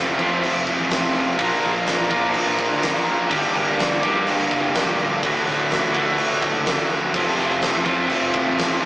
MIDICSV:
0, 0, Header, 1, 6, 480
1, 0, Start_track
1, 0, Tempo, 479233
1, 1399, Time_signature, 4, 2, 24, 8
1, 8868, End_track
2, 0, Start_track
2, 0, Title_t, "Distorted electric guitar"
2, 0, Program_c, 0, 30
2, 922, Note_on_c, 0, 41, 101
2, 928, Note_on_c, 0, 48, 89
2, 1162, Note_on_c, 0, 65, 81
2, 1174, Note_on_c, 0, 60, 68
2, 1181, Note_on_c, 0, 57, 63
2, 1184, Note_on_c, 0, 53, 60
2, 1386, Note_off_c, 0, 41, 0
2, 1386, Note_off_c, 0, 65, 0
2, 1389, Note_off_c, 0, 48, 0
2, 1392, Note_off_c, 0, 60, 0
2, 1396, Note_off_c, 0, 57, 0
2, 1397, Note_off_c, 0, 53, 0
2, 1644, Note_on_c, 0, 70, 75
2, 1654, Note_on_c, 0, 65, 74
2, 1659, Note_on_c, 0, 62, 63
2, 1666, Note_on_c, 0, 58, 65
2, 1870, Note_off_c, 0, 58, 0
2, 1878, Note_off_c, 0, 65, 0
2, 1880, Note_off_c, 0, 62, 0
2, 1889, Note_off_c, 0, 70, 0
2, 2829, Note_on_c, 0, 46, 96
2, 2838, Note_on_c, 0, 53, 98
2, 3073, Note_on_c, 0, 70, 82
2, 3079, Note_on_c, 0, 65, 69
2, 3089, Note_on_c, 0, 62, 68
2, 3094, Note_on_c, 0, 58, 67
2, 3299, Note_off_c, 0, 46, 0
2, 3301, Note_off_c, 0, 70, 0
2, 3304, Note_off_c, 0, 53, 0
2, 3305, Note_off_c, 0, 65, 0
2, 3312, Note_off_c, 0, 58, 0
2, 3326, Note_off_c, 0, 62, 0
2, 3554, Note_on_c, 0, 67, 82
2, 3564, Note_on_c, 0, 62, 74
2, 3570, Note_on_c, 0, 58, 72
2, 3572, Note_on_c, 0, 55, 60
2, 3785, Note_off_c, 0, 55, 0
2, 3796, Note_off_c, 0, 58, 0
2, 3807, Note_off_c, 0, 67, 0
2, 3810, Note_off_c, 0, 62, 0
2, 4764, Note_on_c, 0, 43, 85
2, 4768, Note_on_c, 0, 50, 89
2, 5010, Note_on_c, 0, 67, 67
2, 5020, Note_on_c, 0, 62, 63
2, 5023, Note_on_c, 0, 58, 65
2, 5032, Note_on_c, 0, 55, 63
2, 5226, Note_off_c, 0, 43, 0
2, 5228, Note_off_c, 0, 50, 0
2, 5229, Note_off_c, 0, 67, 0
2, 5234, Note_off_c, 0, 62, 0
2, 5235, Note_off_c, 0, 58, 0
2, 5240, Note_off_c, 0, 55, 0
2, 5481, Note_on_c, 0, 66, 79
2, 5488, Note_on_c, 0, 57, 74
2, 5500, Note_on_c, 0, 50, 61
2, 5710, Note_off_c, 0, 50, 0
2, 5721, Note_off_c, 0, 66, 0
2, 5728, Note_off_c, 0, 57, 0
2, 6678, Note_on_c, 0, 38, 96
2, 6915, Note_on_c, 0, 66, 73
2, 6926, Note_on_c, 0, 57, 68
2, 6939, Note_on_c, 0, 50, 65
2, 7140, Note_off_c, 0, 66, 0
2, 7142, Note_off_c, 0, 38, 0
2, 7146, Note_off_c, 0, 57, 0
2, 7152, Note_off_c, 0, 50, 0
2, 7395, Note_on_c, 0, 65, 72
2, 7407, Note_on_c, 0, 60, 75
2, 7410, Note_on_c, 0, 57, 72
2, 7416, Note_on_c, 0, 53, 66
2, 7623, Note_off_c, 0, 53, 0
2, 7626, Note_off_c, 0, 57, 0
2, 7632, Note_off_c, 0, 60, 0
2, 7645, Note_off_c, 0, 65, 0
2, 8580, Note_on_c, 0, 41, 88
2, 8589, Note_on_c, 0, 48, 98
2, 8831, Note_on_c, 0, 65, 75
2, 8868, Note_off_c, 0, 41, 0
2, 8868, Note_off_c, 0, 48, 0
2, 8868, Note_off_c, 0, 65, 0
2, 8868, End_track
3, 0, Start_track
3, 0, Title_t, "Overdriven electric guitar"
3, 0, Program_c, 1, 29
3, 0, Note_on_c, 1, 41, 88
3, 0, Note_on_c, 1, 48, 96
3, 0, Note_on_c, 1, 53, 67
3, 0, Note_on_c, 1, 57, 77
3, 0, Note_on_c, 1, 60, 77
3, 0, Note_on_c, 1, 65, 82
3, 179, Note_off_c, 1, 65, 0
3, 182, Note_off_c, 1, 60, 0
3, 183, Note_on_c, 1, 65, 75
3, 191, Note_off_c, 1, 41, 0
3, 192, Note_off_c, 1, 48, 0
3, 194, Note_on_c, 1, 60, 69
3, 195, Note_off_c, 1, 57, 0
3, 207, Note_on_c, 1, 57, 63
3, 213, Note_off_c, 1, 53, 0
3, 217, Note_on_c, 1, 53, 62
3, 433, Note_on_c, 1, 41, 90
3, 435, Note_off_c, 1, 53, 0
3, 441, Note_on_c, 1, 48, 95
3, 443, Note_off_c, 1, 57, 0
3, 445, Note_off_c, 1, 60, 0
3, 447, Note_on_c, 1, 53, 103
3, 455, Note_on_c, 1, 57, 96
3, 456, Note_off_c, 1, 65, 0
3, 457, Note_on_c, 1, 60, 100
3, 468, Note_on_c, 1, 65, 107
3, 655, Note_off_c, 1, 65, 0
3, 667, Note_on_c, 1, 65, 76
3, 670, Note_off_c, 1, 60, 0
3, 679, Note_off_c, 1, 57, 0
3, 682, Note_on_c, 1, 60, 70
3, 691, Note_on_c, 1, 57, 65
3, 694, Note_off_c, 1, 53, 0
3, 706, Note_on_c, 1, 53, 62
3, 893, Note_off_c, 1, 53, 0
3, 905, Note_on_c, 1, 53, 80
3, 906, Note_off_c, 1, 57, 0
3, 916, Note_off_c, 1, 41, 0
3, 918, Note_on_c, 1, 57, 83
3, 920, Note_off_c, 1, 48, 0
3, 921, Note_off_c, 1, 60, 0
3, 926, Note_off_c, 1, 65, 0
3, 933, Note_on_c, 1, 60, 87
3, 938, Note_on_c, 1, 65, 86
3, 1378, Note_off_c, 1, 53, 0
3, 1385, Note_off_c, 1, 57, 0
3, 1387, Note_on_c, 1, 46, 99
3, 1392, Note_off_c, 1, 60, 0
3, 1394, Note_off_c, 1, 65, 0
3, 1395, Note_on_c, 1, 53, 98
3, 1403, Note_on_c, 1, 58, 99
3, 1407, Note_on_c, 1, 62, 103
3, 1417, Note_on_c, 1, 65, 107
3, 1420, Note_on_c, 1, 70, 113
3, 1871, Note_off_c, 1, 58, 0
3, 1875, Note_on_c, 1, 58, 81
3, 1883, Note_off_c, 1, 62, 0
3, 1886, Note_off_c, 1, 65, 0
3, 1887, Note_on_c, 1, 62, 83
3, 1898, Note_on_c, 1, 65, 70
3, 1904, Note_off_c, 1, 70, 0
3, 1908, Note_on_c, 1, 70, 78
3, 2103, Note_off_c, 1, 70, 0
3, 2105, Note_off_c, 1, 65, 0
3, 2107, Note_on_c, 1, 70, 76
3, 2113, Note_off_c, 1, 46, 0
3, 2117, Note_off_c, 1, 53, 0
3, 2117, Note_on_c, 1, 65, 71
3, 2125, Note_off_c, 1, 62, 0
3, 2129, Note_on_c, 1, 62, 64
3, 2136, Note_off_c, 1, 58, 0
3, 2140, Note_on_c, 1, 58, 61
3, 2347, Note_off_c, 1, 58, 0
3, 2347, Note_on_c, 1, 46, 96
3, 2358, Note_on_c, 1, 53, 109
3, 2359, Note_on_c, 1, 58, 96
3, 2361, Note_off_c, 1, 65, 0
3, 2365, Note_off_c, 1, 62, 0
3, 2369, Note_off_c, 1, 70, 0
3, 2369, Note_on_c, 1, 62, 103
3, 2373, Note_on_c, 1, 65, 99
3, 2381, Note_on_c, 1, 70, 104
3, 2583, Note_off_c, 1, 70, 0
3, 2595, Note_on_c, 1, 70, 70
3, 2596, Note_off_c, 1, 65, 0
3, 2608, Note_on_c, 1, 65, 67
3, 2618, Note_off_c, 1, 58, 0
3, 2618, Note_off_c, 1, 62, 0
3, 2622, Note_on_c, 1, 62, 65
3, 2630, Note_on_c, 1, 58, 57
3, 2827, Note_off_c, 1, 58, 0
3, 2833, Note_off_c, 1, 46, 0
3, 2839, Note_off_c, 1, 53, 0
3, 2839, Note_on_c, 1, 58, 76
3, 2845, Note_off_c, 1, 65, 0
3, 2847, Note_off_c, 1, 62, 0
3, 2851, Note_on_c, 1, 62, 86
3, 2857, Note_on_c, 1, 65, 83
3, 2861, Note_off_c, 1, 70, 0
3, 2873, Note_on_c, 1, 70, 89
3, 3304, Note_off_c, 1, 58, 0
3, 3314, Note_off_c, 1, 65, 0
3, 3315, Note_on_c, 1, 43, 89
3, 3320, Note_on_c, 1, 50, 97
3, 3322, Note_off_c, 1, 70, 0
3, 3329, Note_off_c, 1, 62, 0
3, 3332, Note_on_c, 1, 55, 90
3, 3333, Note_on_c, 1, 58, 89
3, 3342, Note_on_c, 1, 62, 95
3, 3345, Note_on_c, 1, 67, 102
3, 3792, Note_off_c, 1, 55, 0
3, 3804, Note_on_c, 1, 55, 74
3, 3805, Note_off_c, 1, 58, 0
3, 3817, Note_on_c, 1, 58, 80
3, 3824, Note_off_c, 1, 62, 0
3, 3826, Note_off_c, 1, 67, 0
3, 3828, Note_on_c, 1, 62, 77
3, 3838, Note_on_c, 1, 67, 78
3, 4034, Note_off_c, 1, 67, 0
3, 4037, Note_off_c, 1, 43, 0
3, 4039, Note_off_c, 1, 50, 0
3, 4046, Note_on_c, 1, 67, 74
3, 4053, Note_off_c, 1, 62, 0
3, 4057, Note_on_c, 1, 62, 72
3, 4060, Note_off_c, 1, 58, 0
3, 4065, Note_off_c, 1, 55, 0
3, 4072, Note_on_c, 1, 58, 66
3, 4077, Note_on_c, 1, 55, 61
3, 4281, Note_on_c, 1, 43, 92
3, 4285, Note_off_c, 1, 55, 0
3, 4289, Note_on_c, 1, 50, 92
3, 4293, Note_off_c, 1, 58, 0
3, 4297, Note_on_c, 1, 55, 96
3, 4301, Note_off_c, 1, 62, 0
3, 4304, Note_off_c, 1, 67, 0
3, 4305, Note_on_c, 1, 58, 100
3, 4313, Note_on_c, 1, 62, 106
3, 4316, Note_on_c, 1, 67, 112
3, 4509, Note_off_c, 1, 67, 0
3, 4521, Note_off_c, 1, 62, 0
3, 4521, Note_on_c, 1, 67, 77
3, 4530, Note_off_c, 1, 58, 0
3, 4533, Note_on_c, 1, 62, 67
3, 4542, Note_on_c, 1, 58, 68
3, 4544, Note_off_c, 1, 55, 0
3, 4556, Note_on_c, 1, 55, 59
3, 4744, Note_off_c, 1, 55, 0
3, 4756, Note_on_c, 1, 55, 80
3, 4759, Note_off_c, 1, 43, 0
3, 4759, Note_off_c, 1, 58, 0
3, 4763, Note_off_c, 1, 50, 0
3, 4770, Note_off_c, 1, 62, 0
3, 4771, Note_on_c, 1, 58, 76
3, 4777, Note_off_c, 1, 67, 0
3, 4782, Note_on_c, 1, 62, 81
3, 4789, Note_on_c, 1, 67, 88
3, 5222, Note_off_c, 1, 55, 0
3, 5230, Note_off_c, 1, 58, 0
3, 5235, Note_off_c, 1, 62, 0
3, 5238, Note_on_c, 1, 38, 91
3, 5239, Note_off_c, 1, 67, 0
3, 5245, Note_on_c, 1, 45, 90
3, 5256, Note_on_c, 1, 50, 95
3, 5265, Note_on_c, 1, 57, 92
3, 5272, Note_on_c, 1, 66, 106
3, 5708, Note_off_c, 1, 45, 0
3, 5720, Note_on_c, 1, 45, 74
3, 5722, Note_off_c, 1, 50, 0
3, 5734, Note_on_c, 1, 50, 69
3, 5738, Note_off_c, 1, 57, 0
3, 5742, Note_on_c, 1, 57, 77
3, 5746, Note_off_c, 1, 66, 0
3, 5758, Note_on_c, 1, 66, 78
3, 5940, Note_off_c, 1, 66, 0
3, 5952, Note_on_c, 1, 66, 77
3, 5957, Note_off_c, 1, 38, 0
3, 5967, Note_off_c, 1, 57, 0
3, 5971, Note_on_c, 1, 57, 70
3, 5975, Note_off_c, 1, 50, 0
3, 5987, Note_on_c, 1, 50, 62
3, 6181, Note_off_c, 1, 45, 0
3, 6185, Note_on_c, 1, 38, 89
3, 6193, Note_off_c, 1, 50, 0
3, 6193, Note_on_c, 1, 45, 90
3, 6201, Note_off_c, 1, 57, 0
3, 6205, Note_off_c, 1, 66, 0
3, 6205, Note_on_c, 1, 50, 100
3, 6213, Note_on_c, 1, 57, 109
3, 6217, Note_on_c, 1, 66, 108
3, 6415, Note_off_c, 1, 66, 0
3, 6427, Note_on_c, 1, 66, 76
3, 6433, Note_off_c, 1, 57, 0
3, 6445, Note_on_c, 1, 57, 71
3, 6450, Note_off_c, 1, 50, 0
3, 6462, Note_on_c, 1, 50, 68
3, 6654, Note_off_c, 1, 45, 0
3, 6666, Note_on_c, 1, 45, 77
3, 6669, Note_off_c, 1, 50, 0
3, 6670, Note_off_c, 1, 38, 0
3, 6676, Note_off_c, 1, 57, 0
3, 6681, Note_on_c, 1, 50, 86
3, 6686, Note_off_c, 1, 66, 0
3, 6688, Note_on_c, 1, 57, 81
3, 6699, Note_on_c, 1, 66, 92
3, 7135, Note_off_c, 1, 45, 0
3, 7143, Note_off_c, 1, 50, 0
3, 7147, Note_off_c, 1, 57, 0
3, 7147, Note_on_c, 1, 41, 93
3, 7152, Note_off_c, 1, 66, 0
3, 7152, Note_on_c, 1, 48, 93
3, 7161, Note_on_c, 1, 53, 89
3, 7165, Note_on_c, 1, 57, 104
3, 7174, Note_on_c, 1, 60, 103
3, 7179, Note_on_c, 1, 65, 105
3, 7619, Note_off_c, 1, 53, 0
3, 7623, Note_on_c, 1, 53, 72
3, 7626, Note_off_c, 1, 57, 0
3, 7636, Note_off_c, 1, 60, 0
3, 7638, Note_on_c, 1, 57, 77
3, 7648, Note_on_c, 1, 60, 79
3, 7650, Note_off_c, 1, 65, 0
3, 7654, Note_on_c, 1, 65, 74
3, 7854, Note_off_c, 1, 65, 0
3, 7858, Note_on_c, 1, 65, 82
3, 7864, Note_off_c, 1, 60, 0
3, 7870, Note_off_c, 1, 41, 0
3, 7872, Note_off_c, 1, 48, 0
3, 7872, Note_off_c, 1, 57, 0
3, 7876, Note_on_c, 1, 60, 75
3, 7884, Note_on_c, 1, 57, 63
3, 7888, Note_off_c, 1, 53, 0
3, 7892, Note_on_c, 1, 53, 66
3, 8101, Note_on_c, 1, 41, 92
3, 8104, Note_off_c, 1, 53, 0
3, 8109, Note_on_c, 1, 48, 107
3, 8111, Note_off_c, 1, 57, 0
3, 8116, Note_on_c, 1, 53, 94
3, 8119, Note_off_c, 1, 60, 0
3, 8123, Note_on_c, 1, 57, 100
3, 8126, Note_off_c, 1, 65, 0
3, 8131, Note_on_c, 1, 60, 104
3, 8139, Note_on_c, 1, 65, 108
3, 8328, Note_off_c, 1, 65, 0
3, 8340, Note_on_c, 1, 65, 78
3, 8345, Note_off_c, 1, 60, 0
3, 8357, Note_on_c, 1, 60, 68
3, 8358, Note_off_c, 1, 57, 0
3, 8364, Note_off_c, 1, 53, 0
3, 8370, Note_on_c, 1, 57, 69
3, 8376, Note_on_c, 1, 53, 65
3, 8573, Note_off_c, 1, 53, 0
3, 8585, Note_on_c, 1, 53, 81
3, 8586, Note_off_c, 1, 57, 0
3, 8587, Note_off_c, 1, 41, 0
3, 8591, Note_off_c, 1, 48, 0
3, 8598, Note_off_c, 1, 60, 0
3, 8598, Note_on_c, 1, 57, 80
3, 8610, Note_on_c, 1, 60, 84
3, 8611, Note_off_c, 1, 65, 0
3, 8623, Note_on_c, 1, 65, 93
3, 8868, Note_off_c, 1, 53, 0
3, 8868, Note_off_c, 1, 57, 0
3, 8868, Note_off_c, 1, 60, 0
3, 8868, Note_off_c, 1, 65, 0
3, 8868, End_track
4, 0, Start_track
4, 0, Title_t, "Distorted electric guitar"
4, 0, Program_c, 2, 30
4, 0, Note_on_c, 2, 53, 108
4, 0, Note_on_c, 2, 57, 103
4, 0, Note_on_c, 2, 60, 101
4, 0, Note_on_c, 2, 65, 104
4, 171, Note_off_c, 2, 65, 0
4, 174, Note_off_c, 2, 60, 0
4, 182, Note_off_c, 2, 57, 0
4, 198, Note_off_c, 2, 53, 0
4, 207, Note_on_c, 2, 48, 81
4, 213, Note_on_c, 2, 41, 82
4, 1370, Note_off_c, 2, 41, 0
4, 1380, Note_off_c, 2, 48, 0
4, 2131, Note_on_c, 2, 53, 77
4, 2136, Note_on_c, 2, 46, 76
4, 3286, Note_off_c, 2, 46, 0
4, 3291, Note_off_c, 2, 53, 0
4, 4056, Note_on_c, 2, 50, 74
4, 4061, Note_on_c, 2, 43, 75
4, 5225, Note_off_c, 2, 43, 0
4, 5231, Note_off_c, 2, 50, 0
4, 5969, Note_on_c, 2, 45, 73
4, 5979, Note_on_c, 2, 38, 71
4, 7141, Note_off_c, 2, 38, 0
4, 7146, Note_off_c, 2, 45, 0
4, 7889, Note_on_c, 2, 48, 87
4, 7896, Note_on_c, 2, 41, 84
4, 8868, Note_off_c, 2, 41, 0
4, 8868, Note_off_c, 2, 48, 0
4, 8868, End_track
5, 0, Start_track
5, 0, Title_t, "Picked electric bass"
5, 0, Program_c, 3, 34
5, 72, Note_on_c, 3, 29, 84
5, 185, Note_off_c, 3, 29, 0
5, 192, Note_on_c, 3, 41, 88
5, 416, Note_off_c, 3, 41, 0
5, 558, Note_on_c, 3, 29, 102
5, 779, Note_off_c, 3, 29, 0
5, 792, Note_on_c, 3, 33, 98
5, 1016, Note_off_c, 3, 33, 0
5, 1391, Note_on_c, 3, 34, 105
5, 1505, Note_off_c, 3, 34, 0
5, 1649, Note_on_c, 3, 34, 105
5, 1976, Note_off_c, 3, 34, 0
5, 1997, Note_on_c, 3, 34, 87
5, 2100, Note_off_c, 3, 34, 0
5, 2106, Note_on_c, 3, 46, 97
5, 2333, Note_off_c, 3, 46, 0
5, 2478, Note_on_c, 3, 34, 102
5, 2699, Note_off_c, 3, 34, 0
5, 2720, Note_on_c, 3, 38, 100
5, 2941, Note_off_c, 3, 38, 0
5, 3318, Note_on_c, 3, 31, 103
5, 3429, Note_off_c, 3, 31, 0
5, 3559, Note_on_c, 3, 31, 99
5, 3890, Note_off_c, 3, 31, 0
5, 3924, Note_on_c, 3, 31, 86
5, 4030, Note_off_c, 3, 31, 0
5, 4036, Note_on_c, 3, 43, 92
5, 4258, Note_off_c, 3, 43, 0
5, 4392, Note_on_c, 3, 31, 100
5, 4505, Note_off_c, 3, 31, 0
5, 4517, Note_on_c, 3, 30, 86
5, 4733, Note_off_c, 3, 30, 0
5, 4770, Note_on_c, 3, 28, 76
5, 4980, Note_off_c, 3, 28, 0
5, 5009, Note_on_c, 3, 26, 83
5, 5219, Note_off_c, 3, 26, 0
5, 5240, Note_on_c, 3, 26, 95
5, 5349, Note_off_c, 3, 26, 0
5, 5485, Note_on_c, 3, 26, 95
5, 5812, Note_off_c, 3, 26, 0
5, 5842, Note_on_c, 3, 26, 84
5, 5950, Note_off_c, 3, 26, 0
5, 5957, Note_on_c, 3, 38, 90
5, 6177, Note_off_c, 3, 38, 0
5, 6315, Note_on_c, 3, 26, 106
5, 6536, Note_off_c, 3, 26, 0
5, 6556, Note_on_c, 3, 30, 105
5, 6777, Note_off_c, 3, 30, 0
5, 7154, Note_on_c, 3, 29, 103
5, 7264, Note_off_c, 3, 29, 0
5, 7392, Note_on_c, 3, 29, 107
5, 7724, Note_off_c, 3, 29, 0
5, 7752, Note_on_c, 3, 29, 83
5, 7863, Note_off_c, 3, 29, 0
5, 7873, Note_on_c, 3, 41, 97
5, 8094, Note_off_c, 3, 41, 0
5, 8229, Note_on_c, 3, 29, 106
5, 8452, Note_off_c, 3, 29, 0
5, 8471, Note_on_c, 3, 33, 106
5, 8693, Note_off_c, 3, 33, 0
5, 8868, End_track
6, 0, Start_track
6, 0, Title_t, "Drums"
6, 192, Note_on_c, 9, 36, 82
6, 192, Note_on_c, 9, 49, 63
6, 292, Note_off_c, 9, 36, 0
6, 292, Note_off_c, 9, 49, 0
6, 434, Note_on_c, 9, 49, 86
6, 535, Note_off_c, 9, 49, 0
6, 670, Note_on_c, 9, 36, 81
6, 670, Note_on_c, 9, 49, 62
6, 771, Note_off_c, 9, 36, 0
6, 771, Note_off_c, 9, 49, 0
6, 906, Note_on_c, 9, 49, 85
6, 917, Note_on_c, 9, 38, 120
6, 1006, Note_off_c, 9, 49, 0
6, 1017, Note_off_c, 9, 38, 0
6, 1153, Note_on_c, 9, 49, 67
6, 1253, Note_off_c, 9, 49, 0
6, 1392, Note_on_c, 9, 36, 111
6, 1393, Note_on_c, 9, 49, 86
6, 1492, Note_off_c, 9, 36, 0
6, 1493, Note_off_c, 9, 49, 0
6, 1631, Note_on_c, 9, 49, 70
6, 1731, Note_off_c, 9, 49, 0
6, 1868, Note_on_c, 9, 49, 90
6, 1880, Note_on_c, 9, 38, 111
6, 1969, Note_off_c, 9, 49, 0
6, 1980, Note_off_c, 9, 38, 0
6, 2106, Note_on_c, 9, 49, 68
6, 2111, Note_on_c, 9, 36, 91
6, 2206, Note_off_c, 9, 49, 0
6, 2211, Note_off_c, 9, 36, 0
6, 2341, Note_on_c, 9, 49, 89
6, 2442, Note_off_c, 9, 49, 0
6, 2585, Note_on_c, 9, 49, 62
6, 2590, Note_on_c, 9, 36, 83
6, 2685, Note_off_c, 9, 49, 0
6, 2690, Note_off_c, 9, 36, 0
6, 2828, Note_on_c, 9, 49, 87
6, 2839, Note_on_c, 9, 38, 117
6, 2928, Note_off_c, 9, 49, 0
6, 2939, Note_off_c, 9, 38, 0
6, 3069, Note_on_c, 9, 49, 60
6, 3169, Note_off_c, 9, 49, 0
6, 3310, Note_on_c, 9, 49, 85
6, 3314, Note_on_c, 9, 36, 108
6, 3410, Note_off_c, 9, 49, 0
6, 3414, Note_off_c, 9, 36, 0
6, 3559, Note_on_c, 9, 49, 60
6, 3659, Note_off_c, 9, 49, 0
6, 3798, Note_on_c, 9, 49, 79
6, 3809, Note_on_c, 9, 38, 114
6, 3898, Note_off_c, 9, 49, 0
6, 3909, Note_off_c, 9, 38, 0
6, 4034, Note_on_c, 9, 49, 58
6, 4038, Note_on_c, 9, 36, 85
6, 4134, Note_off_c, 9, 49, 0
6, 4138, Note_off_c, 9, 36, 0
6, 4274, Note_on_c, 9, 49, 86
6, 4374, Note_off_c, 9, 49, 0
6, 4519, Note_on_c, 9, 36, 85
6, 4523, Note_on_c, 9, 49, 56
6, 4619, Note_off_c, 9, 36, 0
6, 4623, Note_off_c, 9, 49, 0
6, 4753, Note_on_c, 9, 49, 84
6, 4764, Note_on_c, 9, 38, 116
6, 4853, Note_off_c, 9, 49, 0
6, 4864, Note_off_c, 9, 38, 0
6, 5000, Note_on_c, 9, 49, 62
6, 5101, Note_off_c, 9, 49, 0
6, 5240, Note_on_c, 9, 36, 118
6, 5240, Note_on_c, 9, 49, 84
6, 5340, Note_off_c, 9, 36, 0
6, 5340, Note_off_c, 9, 49, 0
6, 5481, Note_on_c, 9, 49, 68
6, 5492, Note_on_c, 9, 38, 33
6, 5581, Note_off_c, 9, 49, 0
6, 5592, Note_off_c, 9, 38, 0
6, 5718, Note_on_c, 9, 49, 83
6, 5729, Note_on_c, 9, 38, 108
6, 5818, Note_off_c, 9, 49, 0
6, 5829, Note_off_c, 9, 38, 0
6, 5956, Note_on_c, 9, 36, 86
6, 5959, Note_on_c, 9, 49, 66
6, 6056, Note_off_c, 9, 36, 0
6, 6060, Note_off_c, 9, 49, 0
6, 6192, Note_on_c, 9, 49, 91
6, 6292, Note_off_c, 9, 49, 0
6, 6432, Note_on_c, 9, 49, 62
6, 6435, Note_on_c, 9, 36, 86
6, 6532, Note_off_c, 9, 49, 0
6, 6535, Note_off_c, 9, 36, 0
6, 6670, Note_on_c, 9, 49, 90
6, 6681, Note_on_c, 9, 38, 112
6, 6771, Note_off_c, 9, 49, 0
6, 6782, Note_off_c, 9, 38, 0
6, 6911, Note_on_c, 9, 49, 62
6, 7011, Note_off_c, 9, 49, 0
6, 7152, Note_on_c, 9, 49, 84
6, 7153, Note_on_c, 9, 36, 110
6, 7252, Note_off_c, 9, 49, 0
6, 7253, Note_off_c, 9, 36, 0
6, 7394, Note_on_c, 9, 49, 60
6, 7405, Note_on_c, 9, 38, 35
6, 7494, Note_off_c, 9, 49, 0
6, 7505, Note_off_c, 9, 38, 0
6, 7629, Note_on_c, 9, 49, 78
6, 7640, Note_on_c, 9, 38, 111
6, 7729, Note_off_c, 9, 49, 0
6, 7740, Note_off_c, 9, 38, 0
6, 7867, Note_on_c, 9, 49, 60
6, 7871, Note_on_c, 9, 36, 87
6, 7967, Note_off_c, 9, 49, 0
6, 7971, Note_off_c, 9, 36, 0
6, 8109, Note_on_c, 9, 49, 81
6, 8209, Note_off_c, 9, 49, 0
6, 8348, Note_on_c, 9, 49, 56
6, 8352, Note_on_c, 9, 36, 88
6, 8448, Note_off_c, 9, 49, 0
6, 8452, Note_off_c, 9, 36, 0
6, 8599, Note_on_c, 9, 49, 87
6, 8610, Note_on_c, 9, 38, 121
6, 8699, Note_off_c, 9, 49, 0
6, 8710, Note_off_c, 9, 38, 0
6, 8868, End_track
0, 0, End_of_file